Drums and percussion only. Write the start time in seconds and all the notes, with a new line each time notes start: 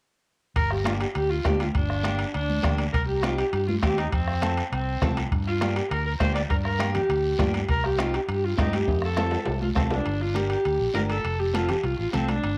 0.56 bombo low, high timbale, long guiro
0.71 bombo rim, high conga
0.85 bombo rim, high conga, high timbale, short guiro
1.01 high timbale, short guiro
1.15 high conga, high timbale, long guiro
1.45 bombo low, bombo rim, high conga, high timbale, low timbale, short guiro
1.60 high conga, high timbale, short guiro
1.75 bombo low, high timbale, long guiro
1.90 bombo rim, high conga
2.04 bombo rim, high conga, high timbale, short guiro
2.19 high timbale, short guiro
2.34 high conga, high timbale, long guiro
2.50 high conga
2.64 bombo low, bombo rim, high conga, low conga, high timbale, short guiro
2.78 high timbale, short guiro
2.94 bombo low, high timbale, long guiro
3.09 high conga
3.23 bombo rim, high conga, high timbale, short guiro
3.38 high timbale, short guiro
3.53 high conga, high timbale, long guiro
3.69 high conga
3.83 bombo low, bombo rim, high conga, high timbale, short guiro
3.98 high timbale, short guiro
4.12 bombo low, high timbale, long guiro
4.28 bombo rim, high conga
4.42 bombo rim, high conga, high timbale, short guiro
4.57 high timbale, short guiro
4.73 high conga, high timbale, long guiro
5.02 bombo low, bombo rim, high conga, low conga, high timbale, low timbale, short guiro
5.17 high timbale, short guiro
5.32 bombo low, high timbale, long guiro
5.47 high conga
5.61 bombo rim, high conga, high timbale, short guiro
5.76 high timbale, short guiro
5.91 high conga, high timbale, long guiro
6.20 bombo low, bombo rim, high conga, high timbale, low timbale, short guiro
6.36 high timbale, short guiro
6.50 bombo low, high timbale, long guiro
6.65 bombo rim, high conga
6.80 bombo rim, high conga, high timbale, short guiro
6.95 low conga, high timbale, short guiro
7.10 high conga, high timbale, long guiro
7.39 bombo low, bombo rim, high conga, low conga, high timbale, low timbale, short guiro
7.54 high timbale, short guiro
7.68 bombo low, high timbale, long guiro
7.84 bombo rim, high conga
7.99 bombo rim, high conga, high timbale, short guiro
8.14 high timbale, short guiro
8.29 high conga, high timbale, long guiro
8.58 bombo low, bombo rim, high conga, high timbale, low timbale, short guiro
8.73 high conga, high timbale, short guiro
8.88 bombo low, high timbale, long guiro
9.02 bombo rim, high conga
9.17 bombo rim, high conga, low timbale, short guiro
9.31 low timbale, short guiro
9.46 high conga, low timbale, long guiro
9.62 high conga
9.76 bombo low, bombo rim, high conga, low conga, low timbale, short guiro
9.91 low timbale, short guiro
10.06 high timbale, long guiro
10.21 high conga
10.36 high conga, high timbale, short guiro
10.50 high timbale, short guiro
10.65 high conga, high timbale, long guiro
10.95 high conga, high timbale, low timbale, short guiro
11.10 high timbale, short guiro
11.25 high timbale, long guiro
11.40 high conga
11.55 high conga, high timbale, short guiro
11.69 low conga, high timbale, short guiro
11.83 high conga, high timbale, long guiro
12.13 high conga, low conga, high timbale, short guiro
12.28 high conga, high timbale, short guiro
12.44 high timbale, long guiro